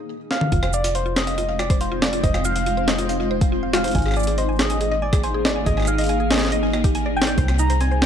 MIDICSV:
0, 0, Header, 1, 7, 480
1, 0, Start_track
1, 0, Tempo, 428571
1, 585, Time_signature, 4, 2, 24, 8
1, 9026, End_track
2, 0, Start_track
2, 0, Title_t, "Soft synth lead"
2, 0, Program_c, 0, 80
2, 345, Note_on_c, 0, 77, 112
2, 827, Note_on_c, 0, 74, 100
2, 843, Note_off_c, 0, 77, 0
2, 1065, Note_on_c, 0, 72, 99
2, 1082, Note_off_c, 0, 74, 0
2, 1305, Note_on_c, 0, 75, 112
2, 1322, Note_off_c, 0, 72, 0
2, 1786, Note_on_c, 0, 74, 99
2, 1803, Note_off_c, 0, 75, 0
2, 2018, Note_off_c, 0, 74, 0
2, 2025, Note_on_c, 0, 72, 95
2, 2262, Note_on_c, 0, 74, 93
2, 2279, Note_off_c, 0, 72, 0
2, 2505, Note_on_c, 0, 75, 101
2, 2521, Note_off_c, 0, 74, 0
2, 2737, Note_off_c, 0, 75, 0
2, 2744, Note_on_c, 0, 77, 112
2, 3224, Note_on_c, 0, 75, 95
2, 3241, Note_off_c, 0, 77, 0
2, 3705, Note_off_c, 0, 75, 0
2, 4185, Note_on_c, 0, 77, 114
2, 4668, Note_on_c, 0, 74, 102
2, 4685, Note_off_c, 0, 77, 0
2, 4906, Note_on_c, 0, 72, 96
2, 4923, Note_off_c, 0, 74, 0
2, 5144, Note_on_c, 0, 75, 111
2, 5161, Note_off_c, 0, 72, 0
2, 5625, Note_on_c, 0, 74, 98
2, 5642, Note_off_c, 0, 75, 0
2, 5865, Note_on_c, 0, 72, 94
2, 5881, Note_off_c, 0, 74, 0
2, 6104, Note_on_c, 0, 74, 94
2, 6121, Note_off_c, 0, 72, 0
2, 6343, Note_on_c, 0, 75, 101
2, 6360, Note_off_c, 0, 74, 0
2, 6583, Note_on_c, 0, 77, 109
2, 6600, Note_off_c, 0, 75, 0
2, 7063, Note_on_c, 0, 75, 97
2, 7079, Note_off_c, 0, 77, 0
2, 7544, Note_off_c, 0, 75, 0
2, 8026, Note_on_c, 0, 79, 112
2, 8504, Note_on_c, 0, 82, 110
2, 8521, Note_off_c, 0, 79, 0
2, 8744, Note_on_c, 0, 80, 106
2, 8761, Note_off_c, 0, 82, 0
2, 8984, Note_on_c, 0, 79, 116
2, 9001, Note_off_c, 0, 80, 0
2, 9026, Note_off_c, 0, 79, 0
2, 9026, End_track
3, 0, Start_track
3, 0, Title_t, "Synth arpeggio sound"
3, 0, Program_c, 1, 84
3, 586, Note_on_c, 1, 65, 85
3, 668, Note_off_c, 1, 65, 0
3, 704, Note_on_c, 1, 72, 102
3, 754, Note_off_c, 1, 72, 0
3, 824, Note_on_c, 1, 77, 77
3, 908, Note_off_c, 1, 77, 0
3, 945, Note_on_c, 1, 65, 77
3, 995, Note_off_c, 1, 65, 0
3, 1064, Note_on_c, 1, 77, 86
3, 1147, Note_off_c, 1, 77, 0
3, 1184, Note_on_c, 1, 65, 77
3, 1267, Note_off_c, 1, 65, 0
3, 1306, Note_on_c, 1, 72, 105
3, 1355, Note_off_c, 1, 72, 0
3, 1425, Note_on_c, 1, 77, 76
3, 1508, Note_off_c, 1, 77, 0
3, 1543, Note_on_c, 1, 65, 82
3, 1594, Note_off_c, 1, 65, 0
3, 1665, Note_on_c, 1, 77, 76
3, 1748, Note_off_c, 1, 77, 0
3, 1786, Note_on_c, 1, 65, 77
3, 1868, Note_off_c, 1, 65, 0
3, 1905, Note_on_c, 1, 72, 100
3, 1955, Note_off_c, 1, 72, 0
3, 2026, Note_on_c, 1, 77, 84
3, 2108, Note_off_c, 1, 77, 0
3, 2146, Note_on_c, 1, 65, 80
3, 2195, Note_off_c, 1, 65, 0
3, 2265, Note_on_c, 1, 77, 74
3, 2348, Note_off_c, 1, 77, 0
3, 2386, Note_on_c, 1, 65, 76
3, 2469, Note_off_c, 1, 65, 0
3, 2506, Note_on_c, 1, 72, 102
3, 2555, Note_off_c, 1, 72, 0
3, 2625, Note_on_c, 1, 77, 77
3, 2708, Note_off_c, 1, 77, 0
3, 2746, Note_on_c, 1, 65, 79
3, 2795, Note_off_c, 1, 65, 0
3, 2866, Note_on_c, 1, 77, 76
3, 2948, Note_off_c, 1, 77, 0
3, 2985, Note_on_c, 1, 65, 84
3, 3068, Note_off_c, 1, 65, 0
3, 3106, Note_on_c, 1, 72, 100
3, 3155, Note_off_c, 1, 72, 0
3, 3225, Note_on_c, 1, 77, 78
3, 3308, Note_off_c, 1, 77, 0
3, 3345, Note_on_c, 1, 65, 80
3, 3395, Note_off_c, 1, 65, 0
3, 3465, Note_on_c, 1, 77, 82
3, 3548, Note_off_c, 1, 77, 0
3, 3583, Note_on_c, 1, 65, 77
3, 3667, Note_off_c, 1, 65, 0
3, 3705, Note_on_c, 1, 72, 104
3, 3754, Note_off_c, 1, 72, 0
3, 3824, Note_on_c, 1, 77, 77
3, 3907, Note_off_c, 1, 77, 0
3, 3944, Note_on_c, 1, 65, 83
3, 3994, Note_off_c, 1, 65, 0
3, 4064, Note_on_c, 1, 77, 79
3, 4148, Note_off_c, 1, 77, 0
3, 4184, Note_on_c, 1, 65, 77
3, 4267, Note_off_c, 1, 65, 0
3, 4304, Note_on_c, 1, 72, 104
3, 4354, Note_off_c, 1, 72, 0
3, 4426, Note_on_c, 1, 80, 85
3, 4508, Note_off_c, 1, 80, 0
3, 4545, Note_on_c, 1, 68, 78
3, 4595, Note_off_c, 1, 68, 0
3, 4666, Note_on_c, 1, 80, 80
3, 4748, Note_off_c, 1, 80, 0
3, 4785, Note_on_c, 1, 68, 80
3, 4868, Note_off_c, 1, 68, 0
3, 4905, Note_on_c, 1, 75, 100
3, 4955, Note_off_c, 1, 75, 0
3, 5027, Note_on_c, 1, 80, 80
3, 5109, Note_off_c, 1, 80, 0
3, 5147, Note_on_c, 1, 68, 78
3, 5196, Note_off_c, 1, 68, 0
3, 5267, Note_on_c, 1, 80, 77
3, 5349, Note_off_c, 1, 80, 0
3, 5385, Note_on_c, 1, 68, 83
3, 5468, Note_off_c, 1, 68, 0
3, 5505, Note_on_c, 1, 75, 104
3, 5555, Note_off_c, 1, 75, 0
3, 5624, Note_on_c, 1, 80, 80
3, 5708, Note_off_c, 1, 80, 0
3, 5744, Note_on_c, 1, 68, 78
3, 5794, Note_off_c, 1, 68, 0
3, 5865, Note_on_c, 1, 80, 83
3, 5948, Note_off_c, 1, 80, 0
3, 5986, Note_on_c, 1, 68, 81
3, 6068, Note_off_c, 1, 68, 0
3, 6105, Note_on_c, 1, 75, 105
3, 6155, Note_off_c, 1, 75, 0
3, 6225, Note_on_c, 1, 80, 78
3, 6308, Note_off_c, 1, 80, 0
3, 6345, Note_on_c, 1, 68, 87
3, 6395, Note_off_c, 1, 68, 0
3, 6466, Note_on_c, 1, 80, 77
3, 6548, Note_off_c, 1, 80, 0
3, 6585, Note_on_c, 1, 68, 80
3, 6668, Note_off_c, 1, 68, 0
3, 6703, Note_on_c, 1, 75, 102
3, 6754, Note_off_c, 1, 75, 0
3, 6825, Note_on_c, 1, 80, 82
3, 6908, Note_off_c, 1, 80, 0
3, 6944, Note_on_c, 1, 68, 78
3, 6994, Note_off_c, 1, 68, 0
3, 7064, Note_on_c, 1, 80, 80
3, 7147, Note_off_c, 1, 80, 0
3, 7184, Note_on_c, 1, 68, 78
3, 7267, Note_off_c, 1, 68, 0
3, 7304, Note_on_c, 1, 75, 102
3, 7354, Note_off_c, 1, 75, 0
3, 7423, Note_on_c, 1, 80, 78
3, 7507, Note_off_c, 1, 80, 0
3, 7543, Note_on_c, 1, 75, 81
3, 7627, Note_off_c, 1, 75, 0
3, 7665, Note_on_c, 1, 67, 78
3, 7748, Note_off_c, 1, 67, 0
3, 7785, Note_on_c, 1, 80, 100
3, 7868, Note_off_c, 1, 80, 0
3, 7905, Note_on_c, 1, 74, 79
3, 7955, Note_off_c, 1, 74, 0
3, 8026, Note_on_c, 1, 80, 76
3, 8140, Note_off_c, 1, 80, 0
3, 8144, Note_on_c, 1, 74, 101
3, 8228, Note_off_c, 1, 74, 0
3, 8266, Note_on_c, 1, 72, 84
3, 8348, Note_off_c, 1, 72, 0
3, 8386, Note_on_c, 1, 60, 77
3, 8468, Note_off_c, 1, 60, 0
3, 8505, Note_on_c, 1, 63, 105
3, 8555, Note_off_c, 1, 63, 0
3, 8624, Note_on_c, 1, 72, 79
3, 8707, Note_off_c, 1, 72, 0
3, 8744, Note_on_c, 1, 60, 87
3, 8794, Note_off_c, 1, 60, 0
3, 8864, Note_on_c, 1, 72, 76
3, 8948, Note_off_c, 1, 72, 0
3, 8986, Note_on_c, 1, 60, 80
3, 9026, Note_off_c, 1, 60, 0
3, 9026, End_track
4, 0, Start_track
4, 0, Title_t, "Synth texture"
4, 0, Program_c, 2, 99
4, 8264, Note_on_c, 2, 63, 87
4, 8266, Note_on_c, 2, 72, 89
4, 9026, Note_off_c, 2, 63, 0
4, 9026, Note_off_c, 2, 72, 0
4, 9026, End_track
5, 0, Start_track
5, 0, Title_t, "Ambient pad"
5, 0, Program_c, 3, 92
5, 585, Note_on_c, 3, 56, 82
5, 585, Note_on_c, 3, 63, 74
5, 585, Note_on_c, 3, 65, 74
5, 585, Note_on_c, 3, 72, 89
5, 586, Note_on_c, 3, 60, 76
5, 4386, Note_off_c, 3, 65, 0
5, 4386, Note_off_c, 3, 72, 0
5, 4387, Note_off_c, 3, 56, 0
5, 4387, Note_off_c, 3, 60, 0
5, 4425, Note_on_c, 3, 68, 90
5, 4426, Note_on_c, 3, 58, 82
5, 8227, Note_off_c, 3, 58, 0
5, 8227, Note_off_c, 3, 68, 0
5, 8263, Note_on_c, 3, 58, 81
5, 8264, Note_on_c, 3, 60, 73
5, 8264, Note_on_c, 3, 67, 76
5, 8264, Note_on_c, 3, 72, 89
5, 9026, Note_off_c, 3, 58, 0
5, 9026, Note_off_c, 3, 60, 0
5, 9026, Note_off_c, 3, 63, 0
5, 9026, Note_off_c, 3, 67, 0
5, 9026, Note_off_c, 3, 72, 0
5, 9026, End_track
6, 0, Start_track
6, 0, Title_t, "FM bass"
6, 0, Program_c, 4, 39
6, 584, Note_on_c, 4, 29, 90
6, 2481, Note_off_c, 4, 29, 0
6, 2504, Note_on_c, 4, 29, 89
6, 4400, Note_off_c, 4, 29, 0
6, 4424, Note_on_c, 4, 32, 90
6, 6320, Note_off_c, 4, 32, 0
6, 6344, Note_on_c, 4, 32, 91
6, 8240, Note_off_c, 4, 32, 0
6, 8263, Note_on_c, 4, 36, 89
6, 9026, Note_off_c, 4, 36, 0
6, 9026, End_track
7, 0, Start_track
7, 0, Title_t, "Drums"
7, 344, Note_on_c, 9, 38, 63
7, 456, Note_off_c, 9, 38, 0
7, 462, Note_on_c, 9, 47, 73
7, 574, Note_off_c, 9, 47, 0
7, 583, Note_on_c, 9, 42, 55
7, 584, Note_on_c, 9, 36, 81
7, 695, Note_off_c, 9, 42, 0
7, 696, Note_off_c, 9, 36, 0
7, 702, Note_on_c, 9, 37, 82
7, 814, Note_off_c, 9, 37, 0
7, 823, Note_on_c, 9, 82, 63
7, 935, Note_off_c, 9, 82, 0
7, 943, Note_on_c, 9, 42, 70
7, 1055, Note_off_c, 9, 42, 0
7, 1063, Note_on_c, 9, 42, 55
7, 1175, Note_off_c, 9, 42, 0
7, 1304, Note_on_c, 9, 37, 54
7, 1304, Note_on_c, 9, 38, 122
7, 1344, Note_off_c, 9, 37, 0
7, 1344, Note_on_c, 9, 37, 45
7, 1384, Note_off_c, 9, 37, 0
7, 1384, Note_on_c, 9, 37, 36
7, 1416, Note_off_c, 9, 38, 0
7, 1424, Note_off_c, 9, 37, 0
7, 1424, Note_on_c, 9, 37, 29
7, 1424, Note_on_c, 9, 42, 68
7, 1465, Note_off_c, 9, 37, 0
7, 1465, Note_on_c, 9, 37, 23
7, 1505, Note_off_c, 9, 37, 0
7, 1505, Note_on_c, 9, 37, 19
7, 1536, Note_off_c, 9, 42, 0
7, 1544, Note_on_c, 9, 42, 56
7, 1617, Note_off_c, 9, 37, 0
7, 1656, Note_off_c, 9, 42, 0
7, 1784, Note_on_c, 9, 37, 84
7, 1896, Note_off_c, 9, 37, 0
7, 1904, Note_on_c, 9, 42, 70
7, 1905, Note_on_c, 9, 36, 117
7, 2016, Note_off_c, 9, 42, 0
7, 2017, Note_off_c, 9, 36, 0
7, 2024, Note_on_c, 9, 42, 57
7, 2136, Note_off_c, 9, 42, 0
7, 2264, Note_on_c, 9, 37, 55
7, 2264, Note_on_c, 9, 38, 126
7, 2376, Note_off_c, 9, 37, 0
7, 2376, Note_off_c, 9, 38, 0
7, 2384, Note_on_c, 9, 42, 73
7, 2496, Note_off_c, 9, 42, 0
7, 2504, Note_on_c, 9, 36, 87
7, 2504, Note_on_c, 9, 42, 58
7, 2616, Note_off_c, 9, 36, 0
7, 2616, Note_off_c, 9, 42, 0
7, 2624, Note_on_c, 9, 37, 80
7, 2736, Note_off_c, 9, 37, 0
7, 2744, Note_on_c, 9, 82, 62
7, 2856, Note_off_c, 9, 82, 0
7, 2863, Note_on_c, 9, 42, 70
7, 2975, Note_off_c, 9, 42, 0
7, 2983, Note_on_c, 9, 42, 57
7, 3095, Note_off_c, 9, 42, 0
7, 3223, Note_on_c, 9, 37, 55
7, 3223, Note_on_c, 9, 38, 126
7, 3335, Note_off_c, 9, 37, 0
7, 3335, Note_off_c, 9, 38, 0
7, 3343, Note_on_c, 9, 42, 69
7, 3455, Note_off_c, 9, 42, 0
7, 3463, Note_on_c, 9, 42, 56
7, 3575, Note_off_c, 9, 42, 0
7, 3823, Note_on_c, 9, 42, 70
7, 3824, Note_on_c, 9, 36, 124
7, 3935, Note_off_c, 9, 42, 0
7, 3936, Note_off_c, 9, 36, 0
7, 4183, Note_on_c, 9, 38, 125
7, 4295, Note_off_c, 9, 38, 0
7, 4303, Note_on_c, 9, 42, 68
7, 4342, Note_off_c, 9, 42, 0
7, 4342, Note_on_c, 9, 42, 56
7, 4383, Note_off_c, 9, 42, 0
7, 4383, Note_on_c, 9, 42, 46
7, 4422, Note_off_c, 9, 42, 0
7, 4422, Note_on_c, 9, 42, 55
7, 4424, Note_on_c, 9, 36, 87
7, 4463, Note_off_c, 9, 42, 0
7, 4463, Note_on_c, 9, 42, 31
7, 4503, Note_off_c, 9, 42, 0
7, 4503, Note_on_c, 9, 42, 25
7, 4536, Note_off_c, 9, 36, 0
7, 4543, Note_on_c, 9, 37, 35
7, 4573, Note_off_c, 9, 37, 0
7, 4573, Note_on_c, 9, 37, 45
7, 4603, Note_off_c, 9, 37, 0
7, 4603, Note_on_c, 9, 37, 53
7, 4615, Note_off_c, 9, 42, 0
7, 4633, Note_off_c, 9, 37, 0
7, 4633, Note_on_c, 9, 37, 64
7, 4663, Note_on_c, 9, 82, 27
7, 4703, Note_off_c, 9, 82, 0
7, 4703, Note_on_c, 9, 82, 37
7, 4744, Note_off_c, 9, 82, 0
7, 4744, Note_on_c, 9, 82, 47
7, 4745, Note_off_c, 9, 37, 0
7, 4784, Note_on_c, 9, 42, 66
7, 4856, Note_off_c, 9, 82, 0
7, 4896, Note_off_c, 9, 42, 0
7, 4903, Note_on_c, 9, 42, 56
7, 5015, Note_off_c, 9, 42, 0
7, 5143, Note_on_c, 9, 37, 54
7, 5143, Note_on_c, 9, 38, 127
7, 5255, Note_off_c, 9, 37, 0
7, 5255, Note_off_c, 9, 38, 0
7, 5263, Note_on_c, 9, 42, 69
7, 5375, Note_off_c, 9, 42, 0
7, 5383, Note_on_c, 9, 42, 56
7, 5495, Note_off_c, 9, 42, 0
7, 5743, Note_on_c, 9, 37, 78
7, 5743, Note_on_c, 9, 42, 68
7, 5744, Note_on_c, 9, 36, 126
7, 5855, Note_off_c, 9, 37, 0
7, 5855, Note_off_c, 9, 42, 0
7, 5856, Note_off_c, 9, 36, 0
7, 5863, Note_on_c, 9, 42, 57
7, 5975, Note_off_c, 9, 42, 0
7, 6104, Note_on_c, 9, 37, 54
7, 6104, Note_on_c, 9, 38, 125
7, 6216, Note_off_c, 9, 37, 0
7, 6216, Note_off_c, 9, 38, 0
7, 6343, Note_on_c, 9, 42, 54
7, 6344, Note_on_c, 9, 36, 85
7, 6455, Note_off_c, 9, 42, 0
7, 6456, Note_off_c, 9, 36, 0
7, 6464, Note_on_c, 9, 37, 34
7, 6493, Note_off_c, 9, 37, 0
7, 6493, Note_on_c, 9, 37, 44
7, 6522, Note_off_c, 9, 37, 0
7, 6522, Note_on_c, 9, 37, 54
7, 6552, Note_off_c, 9, 37, 0
7, 6552, Note_on_c, 9, 37, 62
7, 6582, Note_on_c, 9, 82, 63
7, 6664, Note_off_c, 9, 37, 0
7, 6694, Note_off_c, 9, 82, 0
7, 6702, Note_on_c, 9, 42, 61
7, 6732, Note_off_c, 9, 42, 0
7, 6732, Note_on_c, 9, 42, 51
7, 6762, Note_off_c, 9, 42, 0
7, 6762, Note_on_c, 9, 42, 41
7, 6793, Note_off_c, 9, 42, 0
7, 6793, Note_on_c, 9, 42, 34
7, 6822, Note_off_c, 9, 42, 0
7, 6822, Note_on_c, 9, 42, 54
7, 6934, Note_off_c, 9, 42, 0
7, 7062, Note_on_c, 9, 37, 49
7, 7062, Note_on_c, 9, 38, 120
7, 7093, Note_off_c, 9, 37, 0
7, 7093, Note_on_c, 9, 37, 42
7, 7103, Note_off_c, 9, 38, 0
7, 7103, Note_on_c, 9, 38, 99
7, 7123, Note_off_c, 9, 37, 0
7, 7123, Note_on_c, 9, 37, 34
7, 7143, Note_off_c, 9, 38, 0
7, 7143, Note_on_c, 9, 38, 81
7, 7153, Note_off_c, 9, 37, 0
7, 7153, Note_on_c, 9, 37, 28
7, 7182, Note_off_c, 9, 38, 0
7, 7182, Note_on_c, 9, 38, 64
7, 7223, Note_off_c, 9, 38, 0
7, 7223, Note_on_c, 9, 38, 52
7, 7263, Note_off_c, 9, 38, 0
7, 7263, Note_on_c, 9, 38, 43
7, 7265, Note_off_c, 9, 37, 0
7, 7302, Note_on_c, 9, 42, 52
7, 7375, Note_off_c, 9, 38, 0
7, 7414, Note_off_c, 9, 42, 0
7, 7543, Note_on_c, 9, 37, 76
7, 7655, Note_off_c, 9, 37, 0
7, 7663, Note_on_c, 9, 36, 123
7, 7663, Note_on_c, 9, 42, 68
7, 7775, Note_off_c, 9, 36, 0
7, 7775, Note_off_c, 9, 42, 0
7, 7782, Note_on_c, 9, 42, 53
7, 7894, Note_off_c, 9, 42, 0
7, 8082, Note_on_c, 9, 38, 125
7, 8142, Note_on_c, 9, 42, 69
7, 8194, Note_off_c, 9, 38, 0
7, 8254, Note_off_c, 9, 42, 0
7, 8262, Note_on_c, 9, 42, 53
7, 8264, Note_on_c, 9, 36, 83
7, 8374, Note_off_c, 9, 42, 0
7, 8376, Note_off_c, 9, 36, 0
7, 8382, Note_on_c, 9, 37, 77
7, 8494, Note_off_c, 9, 37, 0
7, 8502, Note_on_c, 9, 82, 63
7, 8614, Note_off_c, 9, 82, 0
7, 8622, Note_on_c, 9, 42, 64
7, 8734, Note_off_c, 9, 42, 0
7, 8742, Note_on_c, 9, 42, 51
7, 8854, Note_off_c, 9, 42, 0
7, 8982, Note_on_c, 9, 37, 49
7, 8982, Note_on_c, 9, 38, 123
7, 9026, Note_off_c, 9, 37, 0
7, 9026, Note_off_c, 9, 38, 0
7, 9026, End_track
0, 0, End_of_file